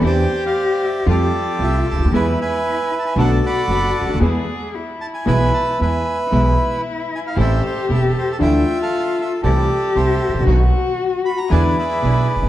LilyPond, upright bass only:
\new Staff \with { instrumentName = "Upright bass" } { \clef bass \time 4/4 \key e \phrygian \tempo 4 = 115 e,16. r4. r32 f,16. r8 r32 c,16. r16 cis,32 d,32 dis,32 | e,16. r4. r32 b,,16. r8 r32 fis,,16. r16 cis,32 d,32 dis,32 | e,16. r4. r32 b,,16. r8 r32 e,16. r8 r32 | b,,16. r4. r32 a,,16. r8 r32 e,,16. r8 r32 |
d,16. r4. r32 c,16. r8 r32 c,16. r16 gis,,32 a,,32 bes,,32 | b,,16. r4. r32 e,16. r8 r32 b,,16. r16 fis,,32 g,,32 r32 | }